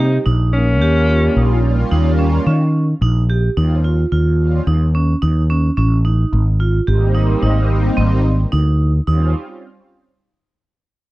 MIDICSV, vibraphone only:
0, 0, Header, 1, 2, 480
1, 0, Start_track
1, 0, Tempo, 550459
1, 710, Time_signature, 5, 2, 24, 8
1, 9693, End_track
2, 0, Start_track
2, 0, Title_t, "Vibraphone"
2, 0, Program_c, 0, 11
2, 0, Note_on_c, 0, 67, 78
2, 152, Note_off_c, 0, 67, 0
2, 224, Note_on_c, 0, 63, 78
2, 562, Note_off_c, 0, 63, 0
2, 711, Note_on_c, 0, 67, 80
2, 879, Note_off_c, 0, 67, 0
2, 951, Note_on_c, 0, 67, 69
2, 1119, Note_off_c, 0, 67, 0
2, 1192, Note_on_c, 0, 63, 65
2, 1528, Note_off_c, 0, 63, 0
2, 1670, Note_on_c, 0, 63, 74
2, 1839, Note_off_c, 0, 63, 0
2, 1910, Note_on_c, 0, 61, 66
2, 2079, Note_off_c, 0, 61, 0
2, 2153, Note_on_c, 0, 61, 75
2, 2489, Note_off_c, 0, 61, 0
2, 2634, Note_on_c, 0, 63, 79
2, 2803, Note_off_c, 0, 63, 0
2, 2874, Note_on_c, 0, 67, 71
2, 3043, Note_off_c, 0, 67, 0
2, 3116, Note_on_c, 0, 63, 78
2, 3284, Note_off_c, 0, 63, 0
2, 3352, Note_on_c, 0, 65, 65
2, 3522, Note_off_c, 0, 65, 0
2, 3592, Note_on_c, 0, 65, 71
2, 3930, Note_off_c, 0, 65, 0
2, 4073, Note_on_c, 0, 63, 70
2, 4243, Note_off_c, 0, 63, 0
2, 4316, Note_on_c, 0, 61, 70
2, 4485, Note_off_c, 0, 61, 0
2, 4553, Note_on_c, 0, 63, 76
2, 4723, Note_off_c, 0, 63, 0
2, 4797, Note_on_c, 0, 61, 73
2, 4965, Note_off_c, 0, 61, 0
2, 5033, Note_on_c, 0, 61, 78
2, 5203, Note_off_c, 0, 61, 0
2, 5275, Note_on_c, 0, 63, 74
2, 5611, Note_off_c, 0, 63, 0
2, 5756, Note_on_c, 0, 65, 69
2, 5924, Note_off_c, 0, 65, 0
2, 5994, Note_on_c, 0, 67, 73
2, 6163, Note_off_c, 0, 67, 0
2, 6232, Note_on_c, 0, 63, 78
2, 6402, Note_off_c, 0, 63, 0
2, 6475, Note_on_c, 0, 63, 77
2, 6811, Note_off_c, 0, 63, 0
2, 6951, Note_on_c, 0, 60, 84
2, 7288, Note_off_c, 0, 60, 0
2, 7429, Note_on_c, 0, 63, 85
2, 7766, Note_off_c, 0, 63, 0
2, 7911, Note_on_c, 0, 63, 76
2, 8135, Note_off_c, 0, 63, 0
2, 9693, End_track
0, 0, End_of_file